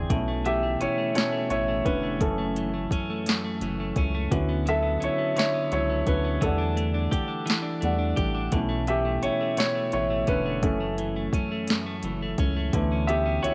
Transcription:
Already playing: E3 C4 D4 G4 G#4 D5 G5
0.10 B1 B2 A3 C#4 E4, kick, closed hi-hat
0.28 A3
0.45 E3 G4 E5, closed hi-hat
0.63 A3
0.81 A1 C#4 E4 C#5, closed hi-hat
0.98 A3
1.15 B2 A3 C#4 E4 C#5, snare, closed hi-hat
1.32 A3
1.50 A1 E3 E4 C#5, closed hi-hat
1.68 A3
1.85 E1 D3 C#4 B4, kick, closed hi-hat
2.03 A3
2.20 F#1 F#2 A3 C#4 E4 A4, kick, closed hi-hat
2.38 A3
2.56 E3, closed hi-hat
2.74 A3
2.91 F#1 C#4, kick, closed hi-hat
3.10 A3
3.26 F#2, snare, closed hi-hat
3.44 A3
3.61 F#1 E3, closed hi-hat
3.80 A3
3.96 C#2 C#4, kick, closed hi-hat
4.15 A3
4.31 D2 D3 B3 C#4 E4 F#4, kick, closed hi-hat
4.49 B3
4.66 F#3 A4 E5, closed hi-hat
4.82 B3
5.00 C#2 C#4 E4 C#5, closed hi-hat
5.18 B3
5.36 D3 E4 C#5, snare, closed hi-hat
5.54 B3
5.72 C#2 F#3 E4 C#5, closed hi-hat
5.90 B3
6.07 D2 D3 C#4 B4, kick, closed hi-hat
6.24 B3
6.41 E2 E3 G3 A3 D4 A4 F#5, kick, closed hi-hat
6.58 D4
6.77 A3, closed hi-hat
6.94 D4
7.11 E2 G4, kick, closed hi-hat
7.28 D4
7.46 E3, closed hi-hat
7.50 snare
7.62 D4
7.81 E2 G3 A3 D4 F#5, closed hi-hat
7.99 D4
8.16 A1 G4, kick, closed hi-hat
8.35 D4
8.52 B1 B2 A3 C#4 E4, kick, closed hi-hat
8.69 A3
8.87 E3 G4 E5, closed hi-hat
9.05 A3
9.23 A1 C#4 E4 C#5, closed hi-hat
9.41 A3
9.57 B2 E4 C#5, snare, closed hi-hat
9.75 A3
9.92 A1 E3 E4 C#5, closed hi-hat
10.10 A3
10.27 E1 D3 C#4 B4, kick, closed hi-hat
10.46 A3
10.63 F#1 F#2 A3 C#4 E4 A4, kick, closed hi-hat
10.80 A3
10.98 E3, closed hi-hat
11.16 A3
11.33 F#1 C#4, kick, closed hi-hat
11.52 A3
11.68 F#2, snare, closed hi-hat
11.86 A3
12.03 F#1 E3, closed hi-hat
12.22 A3
12.38 C#2 C#4, kick, closed hi-hat
12.57 A3
12.73 D2 D3 E3 A3 B3 E4, kick, closed hi-hat
12.92 C#4
13.07 B3 G4 E5, closed hi-hat
13.26 C#4
13.43 C#2 E4 F#4 C#5, closed hi-hat

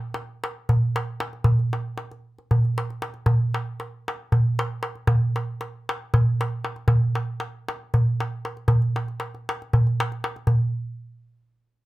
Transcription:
0.14 darbuka tek
0.44 darbuka tek
0.69 darbuka dum
0.96 darbuka tek
1.20 darbuka tek
1.33 darbuka tek
1.44 darbuka dum
1.59 darbuka tek
1.73 darbuka tek
1.98 darbuka tek
2.11 darbuka tek
2.38 darbuka tek
2.51 darbuka dum
2.65 darbuka tek
2.78 darbuka tek
2.90 darbuka tek
3.02 darbuka tek
3.14 darbuka tek
3.26 darbuka dum
3.54 darbuka tek
3.80 darbuka tek
4.08 darbuka tek
4.32 darbuka dum
4.59 darbuka tek
4.83 darbuka tek
4.95 darbuka tek
5.07 darbuka dum
5.36 darbuka tek
5.61 darbuka tek
5.89 darbuka tek
6.14 darbuka dum
6.41 darbuka tek
6.65 darbuka tek
6.76 darbuka tek
6.88 darbuka dum
7.15 darbuka tek
7.40 darbuka tek
7.68 darbuka tek
7.94 darbuka dum
8.20 darbuka tek
8.45 darbuka tek
8.57 darbuka tek
8.68 darbuka dum
8.82 darbuka tek
8.96 darbuka tek
9.08 darbuka tek
9.20 darbuka tek
9.34 darbuka tek
9.49 darbuka tek
9.62 darbuka tek
9.73 darbuka dum
9.87 darbuka tek
10.00 darbuka tek
10.12 darbuka tek
10.24 darbuka tek
10.36 darbuka tek
10.47 darbuka dum

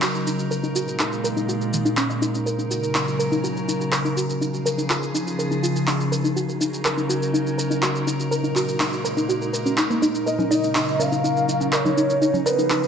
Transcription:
Already playing: C#3 F#3 D#4 A#4
0.02 F#4, clap, shaker
0.15 shaker
0.26 D#4, shaker
0.39 shaker
0.51 A#2 G#3 A#4, shaker
0.63 D#4, shaker
0.75 F#4, shaker
0.88 shaker
0.99 D#4, clap, shaker
1.13 shaker
1.24 A#4, shaker
1.36 D#4, shaker
1.48 F#4, shaker
1.61 shaker
1.73 D#3, shaker
1.85 D#4, shaker
1.97 C#4, clap, shaker
2.10 D#5, shaker
2.22 D#4, shaker
2.35 shaker
2.46 C#3 F#3 A#4, shaker
2.58 D#4, shaker
2.70 F#4, shaker
2.83 shaker
2.95 D#4, clap, shaker
3.08 shaker
3.19 A#4, shaker
3.31 D#4, shaker
3.44 F#4, shaker
3.57 shaker
3.68 D#4, shaker
3.81 shaker
3.92 A#4, clap, shaker
4.05 D#4, shaker
4.17 F#4, shaker
4.30 shaker
4.41 C#3 F3 D#4 G#4, shaker
4.54 shaker
4.66 A#4, shaker
4.78 D#4, shaker
4.90 F4, clap, shaker
5.03 shaker
5.14 D#4, shaker
5.27 shaker
5.39 A#4, shaker
5.51 D#4, shaker
5.63 F4, shaker
5.76 shaker
5.87 D#4, clap, shaker
6.01 shaker
6.12 A#4, shaker
6.24 D#4, shaker
6.36 C#3 F#3 D#4 F#4 A#4, shaker
6.49 shaker
6.60 D#4, shaker
6.74 shaker
6.85 A#4, clap, shaker
6.97 D#4, shaker
7.09 F#4, shaker
7.22 shaker
7.34 D#4, shaker
7.47 shaker
7.58 A#4, shaker
7.70 D#4, shaker
7.82 F#4, clap, shaker
7.96 shaker
8.07 D#4, shaker
8.20 shaker
8.31 A#2 G#3 A#4, shaker
8.43 D#4, shaker
8.56 F#4, clap, shaker
8.69 shaker
8.80 D#4, clap, shaker
8.93 shaker
9.04 A#4, shaker
9.17 D#4, shaker
9.29 F#4, shaker
9.42 shaker
9.53 A#4, shaker
9.65 C#4, shaker
9.78 D#4, clap, shaker
9.90 A#3, shaker
10.02 D#4, shaker
10.15 shaker
10.26 C#3 F#3 A#4 D#5, shaker
10.39 D#4, high conga, low conga, shaker
10.51 D#4, high bongo, shaker
10.64 shaker
10.75 D#4, clap, shaker
10.88 shaker
10.99 A#4 F5, high bongo, high conga, shaker
11.12 D#4, shaker
11.24 D#4, shaker
11.37 shaker
11.48 D#4, shaker
11.61 high conga, shaker
11.72 A#4 C#5, clap, shaker
11.85 D#4, low conga, shaker
11.97 D#4, shaker
12.10 shaker
12.21 F3 D#4 G#4, shaker
12.34 high conga, low conga, shaker
12.46 A#4 B4, high bongo, shaker
12.58 D#4, shaker
12.70 D#4, clap, shaker
12.83 shaker

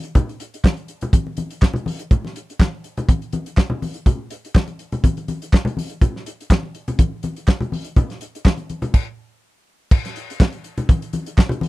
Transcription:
0.03 closed hi-hat
0.15 kick, closed hi-hat, muted conga, low conga
0.29 closed hi-hat
0.40 closed hi-hat
0.54 closed hi-hat
0.64 kick, snare, clap, muted conga, high conga
0.77 closed hi-hat
0.88 closed hi-hat
1.01 closed hi-hat, low conga
1.13 kick, closed hi-hat, high conga
1.27 muted conga
1.37 closed hi-hat, high conga
1.50 closed hi-hat
1.62 kick, snare, clap, muted conga
1.74 closed hi-hat, low conga
1.86 open hi-hat, high conga
1.99 closed hi-hat
2.11 kick, closed hi-hat, muted conga, low conga
2.25 snare, muted conga
2.36 closed hi-hat
2.50 closed hi-hat
2.59 kick, snare, clap, muted conga, high conga
2.84 closed hi-hat
2.97 closed hi-hat, low conga
3.09 kick, closed hi-hat, muted conga, high conga
3.22 closed hi-hat
3.33 closed hi-hat, high conga
3.46 closed hi-hat
3.57 kick, snare, clap
3.70 low conga
3.82 open hi-hat, high conga
3.94 closed hi-hat
4.06 kick, closed hi-hat, low conga
4.30 closed hi-hat
4.45 closed hi-hat
4.55 kick, snare, clap, high conga
4.67 closed hi-hat, muted conga
4.79 closed hi-hat
4.92 closed hi-hat, low conga
5.04 kick, closed hi-hat, muted conga, high conga
5.17 closed hi-hat, muted conga
5.28 closed hi-hat, high conga
5.42 closed hi-hat
5.53 kick, snare, clap
5.65 closed hi-hat, low conga
5.77 open hi-hat, high conga
5.90 closed hi-hat
6.01 kick, closed hi-hat, muted conga, low conga
6.16 snare
6.26 closed hi-hat
6.41 closed hi-hat
6.50 kick, snare, clap, muted conga, high conga
6.63 muted conga
6.75 closed hi-hat
6.88 closed hi-hat, low conga
6.99 kick, closed hi-hat, muted conga, high conga
7.23 closed hi-hat, high conga
7.36 closed hi-hat
7.48 kick, snare, clap, muted conga
7.61 closed hi-hat, muted conga, low conga
7.72 open hi-hat, high conga
7.84 closed hi-hat
7.96 kick, closed hi-hat, muted conga, low conga
8.10 snare, closed hi-hat
8.21 closed hi-hat
8.35 closed hi-hat
8.45 kick, snare, clap, high conga
8.57 closed hi-hat, muted conga
8.69 closed hi-hat, high conga
8.82 closed hi-hat, low conga
8.94 kick, crash
9.91 kick, crash
10.05 snare, closed hi-hat
10.16 closed hi-hat
10.30 closed hi-hat
10.40 kick, snare, clap, high conga
10.52 closed hi-hat
10.64 closed hi-hat
10.77 closed hi-hat, low conga
10.89 kick, closed hi-hat, muted conga, high conga
11.02 closed hi-hat
11.13 closed hi-hat, high conga
11.26 closed hi-hat
11.38 kick, snare, clap, muted conga
11.49 closed hi-hat, low conga
11.61 open hi-hat, high conga

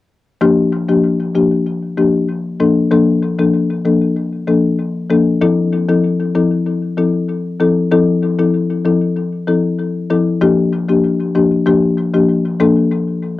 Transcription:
0.41 F3 A#3 D4 G4
0.88 F3 A#3 D4 G4
1.35 F3 A#3 D4 G4
1.97 F3 A#3 D4 G4
2.60 F3 A#3 D4 A4
2.91 F3 A#3 D4 A4
3.39 F3 A#3 D4 A4
3.85 F3 A#3 D4 A4
4.47 F3 A#3 D4 A4
5.10 F3 A#3 D4 A4
5.41 F3 C4 E4 A4
5.89 F3 C4 E4 A4
6.35 F3 C4 E4 A4
6.97 F3 C4 E4 A4
7.60 F3 C4 E4 A4
7.91 F3 C4 E4 A4
8.39 F3 C4 E4 A4
8.85 F3 C4 E4 A4
9.48 F3 C4 E4 A4
10.10 F3 C4 E4 A4
10.41 F3 A#3 D4 G4
10.89 F3 A#3 D4 G4
11.35 F3 A#3 D4 G4
11.66 F3 A#3 D4 G4
12.14 F3 A#3 D4 G4
12.60 F3 A#3 D4 A4

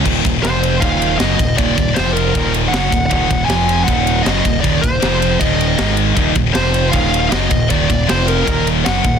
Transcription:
0.03 D#1 D#2 A#2 D#3, kick, crash
0.23 D#1 D#2 A#2, kick, ride
0.41 F1 F2 C3 F3 C5, ride
0.45 snare
0.63 ride
0.80 D#1 D#2 A#2 D#3 F5, kick, ride
1.02 ride
1.18 F#1 F#2 C#3 F#3 D#5, snare, ride
1.39 D#1 D#2 A#2, kick, ride
1.56 D#1 D#2 A#2 D#3 D5, kick, ride
1.77 D#1 D#2 A#2, kick, ride
1.94 F1 F2 C3 F3 C5, snare, ride
2.13 A#4
2.17 ride
2.33 D#1 D#2 A#2 D#3, kick, ride
2.54 ride
2.68 F#1 F#2 C#3 F#3 F#5
2.74 snare, ride
2.91 D#1 D#2 A#2, kick, ride
3.06 D#2 F#5
3.10 D#1 A#2 D#3, kick, ride
3.29 D#1 D#2 A#2, kick, ride
3.45 F1 F2 C3 F3 G#5
3.50 snare, ride
3.69 ride
3.84 D#2 A#2 D#3 F#5, kick
3.88 D#1, ride
4.07 ride
4.23 F#2 C#3 F#3 D#5, snare, ride
4.27 F#1
4.44 D#1 D#2 A#2, kick, ride
4.60 D#2 A#2 D#3 D5, kick, ride
4.65 D#1
4.81 D#1 D#2 A#2 C5, kick, ride
5.02 F1 F2 C3 F3, snare, ride
5.22 ride
5.39 D#1 D#2 A#2 D#3 D#5, kick, ride
5.61 ride
5.78 G#1 G#2 D#3 G#3, snare, ride
5.97 ride
6.13 D#1 D#2 A#2 D#3, kick, ride
6.33 D#1 D#2 A#2, kick, ride
6.53 F1 F2 C3 F3 C5, snare, ride
6.74 ride
6.91 D#1 D#2 A#2 D#3 F5, kick, ride
7.14 ride
7.29 F#1 F#2 C#3 F#3 D#5, snare, ride
7.50 D#1 D#2 A#2, kick, ride
7.70 D#1 D#2 A#2 D#3 D5, kick, ride
7.88 D#1 D#2 A#2, kick, ride
8.06 F2 C3 F3 C5, snare, ride
8.11 F1
8.27 A#4, ride
8.46 D#1 D#2 A#2 D#3, kick, ride
8.67 ride
8.84 F#1 F#2 C#3 F#3 F#5, snare, ride
9.03 D#1 D#2 A#2, kick, ride

